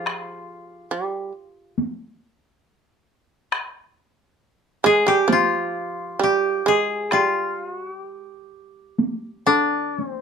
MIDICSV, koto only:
0, 0, Header, 1, 2, 480
1, 0, Start_track
1, 0, Tempo, 859599
1, 34, Time_signature, 4, 2, 24, 8
1, 1474, Tempo, 882353
1, 2914, Tempo, 917431
1, 4354, Tempo, 950872
1, 4834, Tempo, 1000000
1, 5422, End_track
2, 0, Start_track
2, 0, Title_t, "Koto"
2, 0, Program_c, 0, 107
2, 0, Note_on_c, 0, 65, 61
2, 0, Note_on_c, 0, 67, 64
2, 0, Note_on_c, 0, 68, 46
2, 0, Note_on_c, 0, 72, 46
2, 0, Note_on_c, 0, 74, 41
2, 0, Note_on_c, 0, 77, 35
2, 265, Note_off_c, 0, 77, 0
2, 366, Note_off_c, 0, 74, 0
2, 453, Note_off_c, 0, 72, 0
2, 617, Note_off_c, 0, 68, 0
2, 674, Note_off_c, 0, 67, 0
2, 1015, Note_off_c, 0, 65, 0
2, 2682, Note_on_c, 0, 68, 91
2, 2800, Note_on_c, 0, 67, 84
2, 2833, Note_off_c, 0, 68, 0
2, 2934, Note_on_c, 0, 65, 71
2, 3408, Note_off_c, 0, 67, 0
2, 3410, Note_on_c, 0, 67, 74
2, 3643, Note_on_c, 0, 68, 77
2, 3675, Note_off_c, 0, 67, 0
2, 3879, Note_off_c, 0, 65, 0
2, 3879, Note_on_c, 0, 65, 68
2, 3910, Note_off_c, 0, 68, 0
2, 4146, Note_off_c, 0, 65, 0
2, 4146, Note_on_c, 0, 66, 68
2, 4313, Note_off_c, 0, 66, 0
2, 4313, Note_on_c, 0, 67, 68
2, 5062, Note_on_c, 0, 62, 73
2, 5298, Note_off_c, 0, 67, 0
2, 5307, Note_off_c, 0, 62, 0
2, 5307, Note_on_c, 0, 61, 73
2, 5364, Note_off_c, 0, 61, 0
2, 5364, Note_on_c, 0, 60, 73
2, 5422, Note_off_c, 0, 60, 0
2, 5422, End_track
0, 0, End_of_file